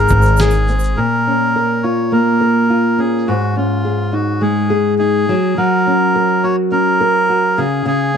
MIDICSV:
0, 0, Header, 1, 5, 480
1, 0, Start_track
1, 0, Tempo, 574163
1, 803, Time_signature, 4, 2, 24, 8
1, 6833, End_track
2, 0, Start_track
2, 0, Title_t, "Melodica"
2, 0, Program_c, 0, 22
2, 0, Note_on_c, 0, 70, 94
2, 331, Note_on_c, 0, 68, 94
2, 335, Note_off_c, 0, 70, 0
2, 811, Note_on_c, 0, 70, 89
2, 828, Note_off_c, 0, 68, 0
2, 1528, Note_on_c, 0, 73, 73
2, 1548, Note_off_c, 0, 70, 0
2, 1772, Note_off_c, 0, 73, 0
2, 1773, Note_on_c, 0, 70, 86
2, 2499, Note_on_c, 0, 68, 77
2, 2510, Note_off_c, 0, 70, 0
2, 2735, Note_on_c, 0, 66, 79
2, 2738, Note_off_c, 0, 68, 0
2, 2976, Note_off_c, 0, 66, 0
2, 2979, Note_on_c, 0, 65, 80
2, 3451, Note_on_c, 0, 66, 68
2, 3466, Note_off_c, 0, 65, 0
2, 3692, Note_on_c, 0, 68, 84
2, 3695, Note_off_c, 0, 66, 0
2, 4135, Note_off_c, 0, 68, 0
2, 4166, Note_on_c, 0, 68, 96
2, 4659, Note_on_c, 0, 70, 92
2, 4660, Note_off_c, 0, 68, 0
2, 5380, Note_on_c, 0, 73, 78
2, 5394, Note_off_c, 0, 70, 0
2, 5484, Note_off_c, 0, 73, 0
2, 5615, Note_on_c, 0, 70, 94
2, 6331, Note_on_c, 0, 68, 91
2, 6352, Note_off_c, 0, 70, 0
2, 6567, Note_off_c, 0, 68, 0
2, 6580, Note_on_c, 0, 68, 97
2, 6833, Note_off_c, 0, 68, 0
2, 6833, End_track
3, 0, Start_track
3, 0, Title_t, "Nylon-string guitar"
3, 0, Program_c, 1, 24
3, 0, Note_on_c, 1, 44, 90
3, 0, Note_on_c, 1, 63, 59
3, 0, Note_on_c, 1, 68, 73
3, 92, Note_on_c, 1, 60, 65
3, 329, Note_off_c, 1, 68, 0
3, 344, Note_on_c, 1, 68, 65
3, 567, Note_off_c, 1, 60, 0
3, 579, Note_on_c, 1, 60, 64
3, 803, Note_off_c, 1, 44, 0
3, 817, Note_on_c, 1, 46, 75
3, 854, Note_off_c, 1, 63, 0
3, 858, Note_off_c, 1, 60, 0
3, 861, Note_off_c, 1, 68, 0
3, 1064, Note_on_c, 1, 61, 54
3, 1303, Note_on_c, 1, 70, 58
3, 1539, Note_on_c, 1, 65, 49
3, 1773, Note_on_c, 1, 58, 60
3, 2003, Note_off_c, 1, 70, 0
3, 2013, Note_on_c, 1, 70, 59
3, 2247, Note_off_c, 1, 65, 0
3, 2257, Note_on_c, 1, 65, 55
3, 2491, Note_off_c, 1, 61, 0
3, 2494, Note_on_c, 1, 61, 55
3, 2730, Note_off_c, 1, 46, 0
3, 2742, Note_on_c, 1, 44, 83
3, 2776, Note_off_c, 1, 58, 0
3, 2776, Note_off_c, 1, 70, 0
3, 2778, Note_off_c, 1, 65, 0
3, 2979, Note_off_c, 1, 61, 0
3, 2982, Note_on_c, 1, 61, 55
3, 3217, Note_on_c, 1, 68, 58
3, 3449, Note_on_c, 1, 63, 53
3, 3690, Note_on_c, 1, 56, 60
3, 3921, Note_off_c, 1, 68, 0
3, 3931, Note_on_c, 1, 68, 62
3, 4167, Note_off_c, 1, 63, 0
3, 4177, Note_on_c, 1, 63, 53
3, 4408, Note_off_c, 1, 56, 0
3, 4423, Note_on_c, 1, 54, 73
3, 4456, Note_off_c, 1, 68, 0
3, 4459, Note_off_c, 1, 63, 0
3, 4462, Note_off_c, 1, 44, 0
3, 4654, Note_off_c, 1, 54, 0
3, 4664, Note_on_c, 1, 54, 85
3, 4904, Note_off_c, 1, 61, 0
3, 4908, Note_on_c, 1, 61, 60
3, 5145, Note_on_c, 1, 70, 62
3, 5383, Note_on_c, 1, 66, 58
3, 5612, Note_off_c, 1, 61, 0
3, 5615, Note_on_c, 1, 61, 65
3, 5846, Note_off_c, 1, 70, 0
3, 5856, Note_on_c, 1, 70, 62
3, 6087, Note_off_c, 1, 66, 0
3, 6097, Note_on_c, 1, 66, 53
3, 6337, Note_on_c, 1, 49, 81
3, 6379, Note_off_c, 1, 66, 0
3, 6379, Note_off_c, 1, 70, 0
3, 6383, Note_off_c, 1, 54, 0
3, 6557, Note_off_c, 1, 49, 0
3, 6568, Note_on_c, 1, 49, 81
3, 6806, Note_off_c, 1, 61, 0
3, 6833, Note_off_c, 1, 49, 0
3, 6833, End_track
4, 0, Start_track
4, 0, Title_t, "Upright bass"
4, 0, Program_c, 2, 32
4, 89, Note_on_c, 2, 32, 110
4, 772, Note_off_c, 2, 32, 0
4, 6833, End_track
5, 0, Start_track
5, 0, Title_t, "Drums"
5, 70, Note_on_c, 9, 82, 56
5, 88, Note_on_c, 9, 36, 89
5, 153, Note_off_c, 9, 82, 0
5, 172, Note_off_c, 9, 36, 0
5, 186, Note_on_c, 9, 82, 46
5, 210, Note_off_c, 9, 82, 0
5, 210, Note_on_c, 9, 82, 59
5, 294, Note_off_c, 9, 82, 0
5, 306, Note_on_c, 9, 82, 68
5, 331, Note_on_c, 9, 38, 102
5, 339, Note_off_c, 9, 82, 0
5, 339, Note_on_c, 9, 82, 80
5, 415, Note_off_c, 9, 38, 0
5, 422, Note_off_c, 9, 82, 0
5, 423, Note_on_c, 9, 82, 50
5, 446, Note_off_c, 9, 82, 0
5, 446, Note_on_c, 9, 82, 45
5, 530, Note_off_c, 9, 82, 0
5, 567, Note_on_c, 9, 82, 39
5, 651, Note_off_c, 9, 82, 0
5, 662, Note_on_c, 9, 82, 49
5, 700, Note_off_c, 9, 82, 0
5, 700, Note_on_c, 9, 82, 58
5, 783, Note_off_c, 9, 82, 0
5, 6833, End_track
0, 0, End_of_file